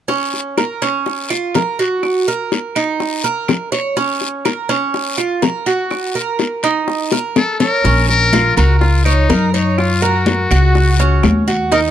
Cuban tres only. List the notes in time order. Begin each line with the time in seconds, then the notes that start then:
0.08 C#4
0.58 A#4
0.82 C#4
1.30 F4
1.55 A#4
1.79 F#4
2.28 A#4
2.76 D#4
3.24 A#4
3.72 C#5
3.97 C#4
4.45 A#4
4.69 C#4
5.18 F4
5.42 A#4
5.66 F#4
6.15 A#4
6.64 D#4
7.12 A#4
7.60 C#5
7.85 C#4
8.33 F4
8.57 A#4
9.06 C#5
9.30 A#4
9.54 C#5
10.02 A#4
10.51 F#4
11.00 C#4
11.48 F#4
11.72 D#4